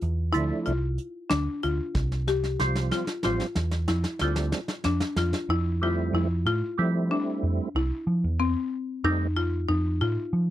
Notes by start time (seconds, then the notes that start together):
0.01 E2, closed hi-hat
0.33 D2 F3 A3 D4 E4, closed hi-hat
0.66 C2 F4, closed hi-hat
0.98 closed hi-hat
1.30 D2 D4, snare, closed hi-hat
1.63 D2 F4, closed hi-hat
1.95 C2, kick, snare
2.12 snare
2.27 G4, snare
2.44 snare
2.59 C2 F3 G3 C4 F4, snare
2.75 snare
2.91 F4, snare
3.07 snare
3.23 A1 F3 G3 C4 F4, snare
3.40 snare
3.55 E2, snare
3.71 snare
3.88 F2 E4, snare
4.04 snare
4.19 D2 G3 A3 C4 F4, snare
4.23 D4
4.36 snare
4.52 snare
4.68 snare
4.84 F2 D4, snare
5.00 snare
5.16 F2 F4, snare
5.33 snare
5.49 F2 E4
5.82 G3 A3 C4 E4 F4
6.13 F2 E4
6.45 A2 F4
6.78 F3 G3 A3 C4 E4
7.11 D4
7.43 F2
7.75 C2 E4
8.07 F3
8.24 E2
8.40 C4
9.04 F2 G3 A3 C4 D#4
9.37 F4
9.69 F2 D#4
10.01 A2 F4
10.33 F3